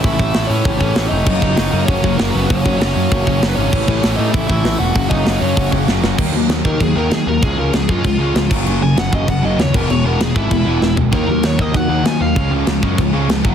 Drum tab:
CC |--------|x-------|--------|x-------|
HH |--o---o-|--o-o-o-|--o-o-o-|--o---o-|
SD |--o---o-|--o---o-|--o---o-|--o---o-|
FT |--------|--------|--------|--------|
BD |oo--oo--|oo--oo--|oo--oo--|oo--oo--|

CC |--------|x-x-x-x-|x-x-x-xx|x-x-x-xx|
HH |o-o-o---|--------|--------|--------|
SD |--o---oo|--o---o-|--o---o-|--o---o-|
FT |--------|--------|--------|--------|
BD |oo--oo--|o--oo---|o--oo--o|---oo--o|

CC |x-x-x---|x-x-x-x-|x-x-x-x-|
HH |--------|--------|--------|
SD |--o---o-|--o---o-|--o---o-|
FT |-------o|--------|--------|
BD |---oo---|o--oo---|o--oo--o|